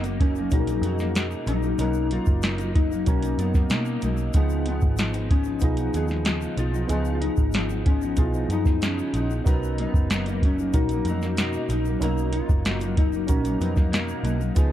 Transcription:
Already playing: F#1 B3 C#4 D#4 F#4 A#4
0.04 F#3 A#3 D#4, closed hi-hat, shaker
0.19 B2 F#3 A#3 C#4 D#4, kick, closed hi-hat
0.36 A#3 D#4, shaker
0.40 F#3
0.51 A#1 C#4 D#4 F#4 G#4, kick, closed hi-hat, shaker
0.60 A#4
0.67 F#3 A#3 D#4, closed hi-hat, shaker
0.81 F2 B2 F#3 A#3 F#4, closed hi-hat, shaker
0.86 D#4
0.99 F#3 A#3 D#4, snare, shaker
1.15 B2 A#3 D#4 F#4, snare, closed hi-hat, shaker
1.31 shaker
1.47 A#1 B2 F#3 A#3 D#4, closed hi-hat, shaker
1.63 F#3 A#3 D#4, shaker
1.78 B1 B2 F#3 A#3 C#4 D#4 A#4, closed hi-hat, shaker
1.93 shaker
2.10 B2 F#3 A#3 D#4 F4, closed hi-hat
2.26 F#1, kick, shaker
2.42 B2 F#3 A#3 D#4, snare, closed hi-hat, shaker
2.57 F#3 A#3 D#4, closed hi-hat, shaker
2.73 B2 F#3 A#3 D#4, kick, closed hi-hat
2.90 F#3 A#3 D#4, shaker
3.06 B1 C#4 D#4 F#4 A#4, kick, closed hi-hat, shaker
3.22 F#3 A#3 D#4, closed hi-hat, shaker
3.38 F#2 B2 F#3 A#3 B3, closed hi-hat, shaker
3.42 D#4
3.54 F#3 A#3 D#4, kick, snare, shaker
3.70 B2 F#3 A#3 D#4, snare, closed hi-hat, shaker
3.85 shaker
4.02 B1 B2 F#3 A#3 D#4, closed hi-hat, shaker
4.17 shaker
4.33 C#2 C#3 F3 B3 D#4 F4 G#4, kick, closed hi-hat, shaker
4.49 shaker
4.66 C#3 F3 B3 D#4, closed hi-hat
4.81 G#1, kick, shaker
4.96 C#3 F3 B3 D#4, snare, closed hi-hat, shaker
5.13 F3 B3 D#4, closed hi-hat, shaker
5.29 C#3 F3 B3 C#4 D#4, kick, closed hi-hat
5.44 B3 D#4, shaker
5.48 F3
5.60 B1 B3 D#4 F4, kick, closed hi-hat, shaker
5.64 D#4 G#4
5.77 F3 B3 D#4, closed hi-hat, shaker
5.94 D#2 C#3 F3 B3 D#4 G#4, closed hi-hat, shaker
6.08 F3 B3 D#4, snare, shaker
6.25 C#3 F3 B3 D#4 G#4, snare, closed hi-hat, shaker
6.41 shaker
6.56 B1 C#3 F3 B3 D#4 F4, closed hi-hat, shaker
6.73 F3 B3 D#4, shaker
6.88 C#2 C#3 F3 B3 D#4 F4 G#4, closed hi-hat, shaker
6.92 D#4
7.05 shaker
7.15 F4
7.21 C#3 F3 B3 D#4, closed hi-hat
7.37 G#1, kick, shaker
7.52 C#3 F3 B3, snare, closed hi-hat, shaker
7.56 D#4
7.69 F3 B3 D#4, shaker
7.86 C#3 F3 B3 C#4, kick, closed hi-hat
7.90 D#4
8.02 F3 B3 D#4, shaker
8.16 B1 B3 D#4 E4 F4 G#4, kick, closed hi-hat, shaker
8.25 F4
8.34 F3 B3 D#4, shaker
8.49 F#2 C#3 F3 B3 D#4, closed hi-hat, shaker
8.64 F3 B3 D#4, kick, snare, shaker
8.81 C#3 F3 B3 D#4, snare, closed hi-hat, shaker
8.85 C#4
8.99 shaker
9.13 A#1 C#3 F3 B3 D#4, closed hi-hat, shaker
9.30 shaker
9.44 B1 B2 F#3 B3 C#4 D#4 F#4 A#4, kick, closed hi-hat, shaker
9.48 D#4
9.63 shaker
9.78 B2 F#3 B3 D#4, closed hi-hat
9.94 F#1, kick, shaker
10.10 B2 F#3 A#3 D#4, snare, closed hi-hat, shaker
10.26 F#3 A#3 D#4, closed hi-hat, shaker
10.42 B2 F#3 A#3 C#4 D#4, kick, closed hi-hat
10.59 F#3 A#3 D#4, shaker
10.73 A#1 C#4 D#4 F#4 A#4, kick, closed hi-hat, shaker
10.89 D#4, closed hi-hat, shaker
10.93 F#3 A#3
11.05 F2 B2 F#3 F#4, closed hi-hat, shaker
11.09 A#3 D#4
11.22 F#3 A#3 D#4, snare, shaker
11.37 B2 A#3 D#4 F#4, snare, closed hi-hat, shaker
11.53 shaker
11.69 A#1 B2 F#3 A#3 D#4, closed hi-hat, shaker
11.85 F#3 A#3 D#4, shaker
12.00 B1 B2 F#3 A#3 C#4 D#4 A#4, closed hi-hat, shaker
12.18 shaker
12.33 B2 F#3 A#3 D#4 F4, closed hi-hat
12.49 F#1, kick, shaker
12.65 B2 F#3 A#3 D#4, snare, closed hi-hat, shaker
12.81 F#3 A#3 D#4, closed hi-hat, shaker
12.96 B2 F#3 A#3 D#4, kick, closed hi-hat
13.12 F#3 A#3 D#4, shaker
13.27 A#1 C#4 D#4 F#4 A#4, kick, closed hi-hat, shaker
13.43 F#3 A#3 D#4, closed hi-hat, shaker
13.60 F2 B2 F#3 A#3 B3 D#4, closed hi-hat, shaker
13.76 F#3 A#3 D#4, kick, snare, shaker
13.91 B2 A#3 D#4, snare, closed hi-hat, shaker
14.08 shaker
14.23 B1 B2 F#3 A#3 D#4, closed hi-hat, shaker
14.39 F#3 A#3 D#4, shaker
14.55 C#2 C#3 F3 B3 D#4 F4 G#4, kick, closed hi-hat, shaker

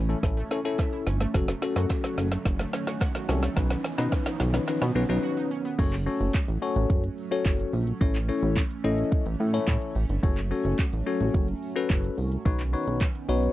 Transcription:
Already playing: A1 E3 A3 C#4, riser
0.09 A3 C#4 E4 A4, closed hi-hat, shaker
0.23 A1 C#4 E4 A4, kick, snare, shaker
0.37 A3, closed hi-hat, shaker
0.51 C#4 E4 A4, snare, open hi-hat, shaker
0.65 C#4 E4 A4, closed hi-hat, shaker
0.79 E5, kick, snare, clap, shaker
0.93 E4, closed hi-hat, shaker
1.07 G1 C#4, snare, open hi-hat, shaker
1.20 A3, snare, closed hi-hat, shaker
1.34 F#1 F#3 A3 C#4 F#4 A4, kick, snare, shaker
1.48 A3, snare, closed hi-hat, shaker
1.62 C#4 F#4 A4, snare, open hi-hat, shaker
1.76 F#2 F#4, snare, closed hi-hat, shaker
1.90 kick, snare, clap, shaker
2.04 F#4, snare, closed hi-hat, shaker
2.18 F#1, snare, open hi-hat, shaker
2.32 A3, snare, closed hi-hat, shaker
2.45 F#1, kick, snare, shaker
2.59 A3, snare, closed hi-hat, shaker
2.73 C#4, snare, open hi-hat, shaker
2.87 F#4, snare, closed hi-hat, shaker
3.01 F#5, kick, snare, clap, shaker
3.15 F#4, snare, closed hi-hat, shaker
3.28 C2 C#4 F#4 A4, snare, open hi-hat, shaker
3.43 A3, snare, closed hi-hat, shaker
3.56 B1 D#3 F#3 B3 C#4 D#4 B4, kick, snare, shaker
3.70 B3, snare, closed hi-hat, shaker
3.84 snare, open hi-hat, shaker
3.98 B2 C#4 D#4 B4, snare, closed hi-hat, shaker
4.12 kick, snare, clap, shaker
4.26 D#4, snare, closed hi-hat, shaker
4.40 B1, snare, open hi-hat, shaker
4.54 B3 C#4 D#4 B4, snare, closed hi-hat, shaker
4.67 C#4 D#4 B4, snare, shaker
4.82 B2 B3, snare, closed hi-hat, shaker
4.95 B1 C#4 D#4 B4, open hi-hat, shaker
5.09 B1 C#4 D#4 B4, closed hi-hat, shaker
5.23 F#4
5.37 D#4
5.51 C#4
5.65 B3
5.79 F#1 F#3 A3 C#4 F#4 A4 C#5, kick, crash, shaker
5.93 clap, closed hi-hat, shaker
6.06 C#4 F#4 A4 C#5, open hi-hat, shaker
6.21 F#1, closed hi-hat, shaker
6.34 kick, clap, shaker
6.48 A1, closed hi-hat, shaker
6.62 C#4 F#4 A4 C#5, open hi-hat, shaker
6.76 A1, closed hi-hat, shaker
6.90 F#1, kick, shaker
7.04 closed hi-hat, shaker
7.18 open hi-hat, shaker
7.31 C#4 F#4 A4 C#5, closed hi-hat, shaker
7.45 F#1, kick, clap, shaker
7.59 closed hi-hat, shaker
7.73 A#1, open hi-hat, shaker
7.87 closed hi-hat, shaker
8.01 A1 C#4 E4 A4 C#5, kick, shaker
8.15 clap, closed hi-hat, shaker
8.29 C#4 E4 A4 C#5, open hi-hat, shaker
8.43 A1, closed hi-hat, shaker
8.57 kick, clap, shaker
8.71 closed hi-hat, shaker
8.84 A1 C#4 E4 A4 D#5, open hi-hat, shaker
8.98 closed hi-hat, shaker
9.12 kick, shaker
9.26 A1, closed hi-hat, shaker
9.40 A2, open hi-hat, shaker
9.53 C#4 E4 A4 C#5, closed hi-hat, shaker
9.68 A2, kick, clap, shaker
9.82 closed hi-hat, shaker
9.95 A1, open hi-hat, shaker
10.09 G1, closed hi-hat, shaker
10.23 F#1 F#3 C#4 F#4 A4 C#5, kick, shaker
10.37 clap, closed hi-hat, shaker
10.51 C#4 F#4 A4 C#5, open hi-hat, shaker
10.65 F#1, closed hi-hat, shaker
10.79 kick, clap, shaker
10.93 A1, closed hi-hat, shaker
11.06 C#4 F#4 A4 C#5, open hi-hat, shaker
11.20 A1, closed hi-hat, shaker
11.34 F#1, kick, shaker
11.48 closed hi-hat, shaker
11.62 open hi-hat, shaker
11.76 C#4 F#4 A4 B4, closed hi-hat, shaker
11.90 F#1, kick, clap, shaker
12.04 closed hi-hat, shaker
12.18 C2, open hi-hat, shaker
12.32 closed hi-hat, shaker
12.45 B1 D#3 D#4 F#4 B4 C#5, kick, shaker
12.59 clap, closed hi-hat, shaker
12.73 D#4 F#4 B4 C#5, open hi-hat, shaker
12.87 B1, closed hi-hat, shaker
13.01 kick, clap, shaker
13.15 closed hi-hat, shaker
13.29 B1 D#4 F#4 B4 C#5, open hi-hat, shaker
13.43 closed hi-hat, shaker

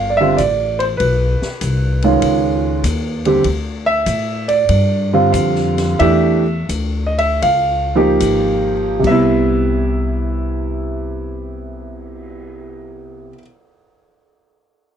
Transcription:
Already playing: G1 F5
0.10 D5
0.17 D3 G3 C4 E5
0.21 F4
0.37 A1 D5, kick, hi-hat pedal, ride
0.79 C5, ride
0.97 B1 B4, kick, ride
1.41 muted upright bass stroke, snare
1.61 C2, kick, hi-hat pedal, ride
2.02 D#3 G#3 C#4 F4, ride
2.22 C#2, kick, ride
2.84 D#2, kick, hi-hat pedal, ride
3.25 D3 G3 C4 G4, ride
3.44 D2, kick, ride
3.86 E5
4.06 A2, kick, hi-hat pedal, ride
4.48 D5, ride
4.69 G2, kick, ride
5.13 D3 G3 C4 F4
5.33 F2 F5, kick, hi-hat pedal, ride
5.55 snare
5.77 snare, ride
5.99 E2 E3 A3 D4 G4 E5, kick, ride
6.69 D2, kick, hi-hat pedal, ride
7.07 D#5
7.18 E5, ride
7.42 C#2 F5, kick, ride
7.96 F3 A#3 D#4 G4
8.20 G#1, kick, hi-hat pedal, ride
8.99 C3 G3
9.04 C2 B3 E5, kick, crash
9.11 E4
9.64 cymbal swell

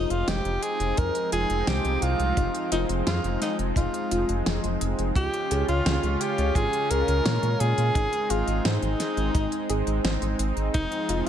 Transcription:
Already playing: F3 G#3 C4 D#4 F4
0.10 F1 F4, closed hi-hat
0.28 F1 G#3 G4, snare, closed hi-hat
0.45 F1, closed hi-hat
0.63 G#4, closed hi-hat
0.80 F1, closed hi-hat
0.97 F2 D#4 A#4, kick, closed hi-hat
1.15 closed hi-hat
1.32 F1 F4 G#4, closed hi-hat
1.50 F1, closed hi-hat
1.67 C2 G#3 G4, snare, closed hi-hat
1.85 C2, closed hi-hat
2.02 C2 F4, closed hi-hat
2.19 C2, closed hi-hat
2.37 F1 D#4, kick, closed hi-hat
2.55 closed hi-hat
2.72 F1 D#4 F4, closed hi-hat
2.89 F1, closed hi-hat
3.07 F2 F4 G#4, snare, closed hi-hat
3.24 F1, closed hi-hat
3.42 D#4, snare, closed hi-hat
3.59 F1, closed hi-hat
3.76 F1 D#4 F4, kick, closed hi-hat
3.94 closed hi-hat
4.11 F1 F4, closed hi-hat
4.29 F1, closed hi-hat
4.46 F1 G#4, snare, closed hi-hat
4.64 F1, closed hi-hat
4.81 F1, closed hi-hat
4.99 F1, closed hi-hat
5.15 C#2 C#3 C#4 F4 G4, kick, closed hi-hat
5.34 closed hi-hat
5.51 C#2 G#4, closed hi-hat
5.68 C#2 F4, closed hi-hat
5.86 C#2 C#5, snare, closed hi-hat
6.03 C#2, closed hi-hat
6.21 G4, closed hi-hat
6.38 C#2, closed hi-hat
6.55 G#1 F4 G#4, kick, closed hi-hat
6.73 closed hi-hat
6.90 C#2 G#4 A#4, closed hi-hat
7.08 C#2, closed hi-hat
7.25 A#2 C#5, snare, closed hi-hat
7.43 A#2, closed hi-hat
7.60 A#2 G#4, closed hi-hat
7.78 A#2, closed hi-hat
7.95 G#1 G#3 C4 D#4, kick, closed hi-hat
8.13 closed hi-hat
8.30 G#1 F4 G#4, closed hi-hat
8.47 G#1, closed hi-hat
8.65 G#2 D#4 C5, snare, closed hi-hat
8.82 G#1, closed hi-hat
9.00 snare, closed hi-hat
9.17 G#1, closed hi-hat
9.35 G#1 D#4, kick, closed hi-hat
9.52 closed hi-hat
9.70 G#1 G#4, closed hi-hat
9.87 G#1, closed hi-hat
10.04 G#1 C5, snare, closed hi-hat
10.22 G#1, closed hi-hat
10.39 G#1, closed hi-hat
10.57 G#1, closed hi-hat
10.74 F1 F3 G#3 D#4, kick, closed hi-hat
10.92 closed hi-hat
11.09 F1 F4, closed hi-hat

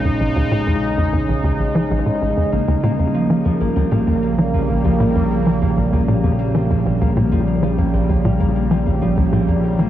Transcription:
Already playing: A#1 C#3 G#3 D#4
0.05 F2
0.20 A#1
0.36 D#2
0.51 A#2
0.67 F2
0.98 F2
1.13 F2
1.29 A#1
1.44 D#2
1.60 A#1
1.75 F3
1.91 A#1
2.06 A#2
2.21 A#1
2.37 F2
2.52 A#1 G3 A#3
2.68 D#2 A#4
2.83 A#2 A#3
2.99 F2 A#3
3.14 F3
3.30 F3 A#3
3.45 F2 F3
3.61 A#1 A#3
3.76 D#2 C4
3.91 A#2 A#3
4.07 F2 A#4
4.22 A#3
4.38 F3 A#3
4.54 F2 F3
4.69 A#1 A#3
4.84 D#2 F3
5.00 A#2 A#3
5.15 F2 C4
5.31 A#3
5.46 F3 A#4
5.62 F2 A#3
5.77 A#1 A#3
5.92 D#2 F3
6.08 A#2 A#3
6.24 F2 F3
6.39 A#3
6.54 F3 C4
6.70 F2 A#3
6.85 A#1 A#4
7.01 D#2 A#3
7.16 A#2 A#3
7.32 F2 F3
7.47 A#3
7.63 F3
7.78 F2 A#3
7.93 A#1 C4
8.09 D#2 A#3
8.24 A#2 A#4
8.40 F2 A#3
8.56 A#3
8.71 F3
8.86 F2 A#3
9.02 A#1 F3
9.17 D#2 A#3
9.33 A#2 C4
9.48 F2 A#3
9.64 A#4
9.79 F3 A#3

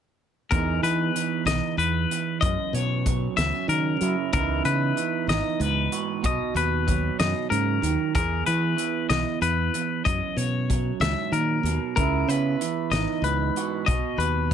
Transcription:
0.51 E2 E3 B3 D#4 A#4, kick, closed hi-hat
0.55 G#4
0.83 E3 B3 B4, closed hi-hat
1.15 E3, closed hi-hat
1.45 B1 D#5, snare, closed hi-hat
1.77 E2 B4, closed hi-hat
2.11 E2, closed hi-hat
2.41 F#2 D#5, kick, closed hi-hat
2.73 B2 B3 C#5, closed hi-hat
3.06 F#3, kick, closed hi-hat
3.37 C#2 B3 E5, snare, closed hi-hat
3.54 C#4
3.68 C#3 D#3 A#4, closed hi-hat
4.01 F#3 E4, closed hi-hat
4.33 C#2 C#3 E3 B3 D#4 A#4, kick, closed hi-hat
4.37 E4
4.64 C#3 B3 B4, closed hi-hat
4.97 E3, closed hi-hat
5.27 G#1 D#4 D#5, snare, closed hi-hat
5.60 C#2 G#2 B4, closed hi-hat
5.92 F#4, closed hi-hat
6.23 B1 B2 F#4 D#5, kick, closed hi-hat
6.54 D#2 B4, closed hi-hat
6.87 F#3, kick, closed hi-hat
7.19 F#2 B2 D#5, snare, closed hi-hat
7.50 G#2 C#3 A#4, closed hi-hat
7.82 D#2 D#3, closed hi-hat
8.14 E2 G#4 A#4, kick, closed hi-hat
8.46 E3 B3 B4, closed hi-hat
8.77 E3, closed hi-hat
9.10 B1 D#5, snare, closed hi-hat
9.41 E2 B4, closed hi-hat
9.74 E2, closed hi-hat
10.05 F#2 D#5, kick, closed hi-hat
10.37 B2 C#5, closed hi-hat
10.70 F#3, kick, closed hi-hat
11.00 C#2 G#2 E5, snare, closed hi-hat
11.32 A#2 D#3 A#4, closed hi-hat
11.63 D#2 B2, closed hi-hat
11.96 C#2 C#3 E4 A#4, kick, closed hi-hat
12.28 C#3 B3 B4, closed hi-hat
12.61 E3, closed hi-hat
12.91 G#1 D#4 D#5, snare, closed hi-hat
13.22 C#2 G#2 B4, closed hi-hat
13.56 F#4, closed hi-hat
13.86 B1 B2 F#4 D#5, kick, closed hi-hat
14.18 D#2 B4, closed hi-hat

